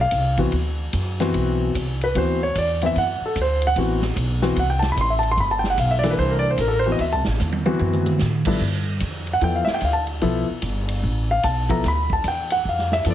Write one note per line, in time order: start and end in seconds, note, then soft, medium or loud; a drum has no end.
0.00 0.11 B1 medium
0.00 0.37 F5 loud
0.11 0.51 C2 medium
0.11 kick soft
0.11 hi-hat pedal medium
0.11 ride medium
0.37 0.52 E3 medium
0.37 0.52 B3 medium
0.37 0.52 C4 medium
0.37 0.52 F#4 medium
0.37 kick soft
0.37 ride medium
0.52 0.92 D2 medium
0.52 kick soft
0.52 ride medium
0.93 1.32 F#2 medium
0.93 kick soft
0.93 hi-hat pedal medium
0.93 ride medium
1.20 1.72 E3 medium
1.20 1.72 B3 medium
1.20 1.72 C4 medium
1.20 1.72 F#4 medium
1.20 snare medium
1.20 ride soft
1.34 1.73 B1 medium
1.34 kick soft
1.34 ride medium
1.75 2.14 C2 medium
1.75 kick soft
1.75 hi-hat pedal medium
1.75 ride medium
2.01 2.16 B4 medium
2.01 ride soft
2.15 2.54 D2 medium
2.15 2.39 E3 medium
2.15 2.38 B3 medium
2.15 2.39 C4 medium
2.15 2.39 F#4 medium
2.15 2.41 C5 medium
2.15 kick soft
2.15 ride medium
2.43 2.56 C#5 medium
2.55 2.94 E2 medium
2.55 2.82 D5 medium
2.55 kick soft
2.55 hi-hat pedal medium
2.55 ride medium
2.81 2.95 E3 medium
2.81 2.95 B3 medium
2.81 2.95 C4 medium
2.81 2.95 E4 medium
2.81 ride medium
2.86 2.98 E5 loud
2.95 3.20 F#2 medium
2.95 3.22 F#5 loud
2.95 kick soft
2.95 ride medium
3.20 muted upright bass stroke soft
3.26 3.38 A4 medium
3.35 3.75 D2 medium
3.35 kick soft
3.35 hi-hat pedal medium
3.35 ride medium
3.42 3.64 C5 medium
3.62 ride soft
3.67 4.02 F#5 loud
3.76 4.15 A1 medium
3.76 4.00 E3 medium
3.76 4.00 B3 medium
3.76 4.00 C4 medium
3.76 4.01 F#4 medium
3.76 kick soft
3.76 ride medium
4.02 snare medium
4.16 4.56 B1 medium
4.16 kick soft
4.16 hi-hat pedal medium
4.16 ride medium
4.42 4.56 E3 medium
4.42 4.56 B3 medium
4.42 4.56 C4 medium
4.42 4.56 F#4 medium
4.42 snare soft
4.56 4.96 C2 medium
4.56 4.71 F#5 medium
4.56 kick soft
4.56 ride medium
4.70 4.83 G5 medium
4.79 4.88 A5 loud
4.79 snare medium
4.79 ride soft
4.92 4.98 B5 medium
4.96 5.36 A1 medium
4.96 kick soft
4.96 hi-hat pedal medium
4.96 ride medium
5.01 5.12 C6 loud
5.10 5.23 E5 medium
5.19 5.28 A5 loud
5.19 ride medium
5.31 5.38 C6 loud
5.37 5.77 G1 medium
5.37 5.52 B5 medium
5.37 kick soft
5.37 ride medium
5.51 5.64 A5 loud
5.59 5.68 G5 medium
5.64 snare soft
5.70 5.78 F#5 medium
5.77 6.17 B1 loud
5.77 5.91 F5 medium
5.77 kick soft
5.77 hi-hat pedal medium
5.77 ride medium
5.91 6.04 E5 medium
5.99 6.08 D5 loud
6.03 6.56 E3 medium
6.03 6.56 A#3 medium
6.03 6.56 D4 medium
6.03 6.56 A4 medium
6.03 snare soft
6.03 ride medium
6.10 6.18 B4 medium
6.18 6.57 C2 medium
6.18 6.31 C5 loud
6.18 kick soft
6.30 6.43 A#4 medium
6.39 6.49 D5 loud
6.50 6.58 C5 medium
6.58 6.98 A1 medium
6.58 6.68 A#4 medium
6.58 kick soft
6.58 hi-hat pedal medium
6.58 ride medium
6.68 6.72 A4 medium
6.74 6.85 A#4 medium
6.79 6.89 C5 loud
6.84 6.99 E3 medium
6.84 6.98 B3 medium
6.84 6.99 C4 medium
6.84 6.99 F#4 medium
6.84 ride medium
6.92 6.99 D#5 medium
6.99 7.13 D2 medium
6.99 7.13 E5 medium
6.99 kick soft
6.99 ride medium
7.13 7.26 C2 medium
7.13 7.20 A5 loud
7.24 7.39 A1 medium
7.24 snare medium
7.39 7.79 E2 medium
7.39 hi-hat pedal medium
7.39 mid tom medium
7.52 high tom medium
7.66 8.18 E3 medium
7.66 8.18 B3 medium
7.66 8.18 C4 medium
7.66 8.18 F#4 medium
7.66 high tom medium
7.79 8.19 F#2 medium
7.79 high tom medium
7.93 mid tom medium
8.06 mid tom loud
8.19 8.60 A2 medium
8.19 snare medium
8.19 hi-hat pedal medium
8.45 8.60 G2 medium
8.45 8.60 F3 medium
8.45 8.60 B3 medium
8.45 8.60 E4 medium
8.45 8.60 A4 medium
8.45 kick medium
8.45 crash medium
8.60 9.00 G2 medium
8.60 kick soft
9.00 9.41 F2 medium
9.00 kick soft
9.00 hi-hat pedal medium
9.00 ride medium
9.27 ride soft
9.33 9.41 F#5 medium
9.41 9.66 E2 medium
9.41 9.65 F3 medium
9.41 9.65 B3 soft
9.41 9.66 E4 soft
9.41 9.66 A4 medium
9.41 9.56 G5 loud
9.41 kick soft
9.41 ride medium
9.56 9.68 F5 medium
9.65 9.73 E5 medium
9.65 muted upright bass stroke soft
9.65 snare medium
9.74 9.82 G5 medium
9.81 10.21 D2 medium
9.81 kick soft
9.81 hi-hat pedal medium
9.81 ride medium
9.85 9.96 F5 medium
9.93 10.02 A5 loud
10.07 ride soft
10.21 10.46 B1 medium
10.21 10.46 F3 medium
10.21 10.46 B3 medium
10.21 10.46 E4 medium
10.21 10.46 A4 medium
10.21 kick soft
10.21 ride medium
10.49 muted upright bass stroke soft
10.62 11.02 G1 medium
10.62 kick soft
10.62 hi-hat pedal soft
10.62 ride medium
10.89 ride medium
11.03 11.43 A1 medium
11.03 kick soft
11.31 11.45 F5 medium
11.43 11.83 B1 medium
11.43 11.70 A5 medium
11.43 kick soft
11.43 hi-hat pedal medium
11.43 ride medium
11.69 11.83 F3 medium
11.69 11.83 B3 medium
11.69 11.84 E4 medium
11.69 11.83 A4 medium
11.69 11.85 A#5 loud
11.69 kick medium
11.69 ride soft
11.84 12.23 D2 medium
11.84 kick soft
11.84 snare soft
11.84 ride medium
11.88 12.12 B5 loud
12.10 12.26 A5 medium
12.10 kick medium
12.24 12.64 E2 medium
12.24 kick soft
12.24 hi-hat pedal medium
12.24 ride medium
12.28 12.52 G5 medium
12.50 12.66 F#5 loud
12.50 ride medium
12.65 13.05 F2 medium
12.65 12.93 F5 medium
12.65 kick soft
12.78 snare soft
12.92 13.07 E5 medium
12.92 snare soft
13.04 13.14 F#2 medium
13.04 13.14 F3 medium
13.04 13.14 B3 medium
13.04 13.14 E4 medium
13.04 13.14 A4 medium
13.04 kick soft
13.04 hi-hat pedal medium
13.04 ride medium
13.10 13.14 D5 medium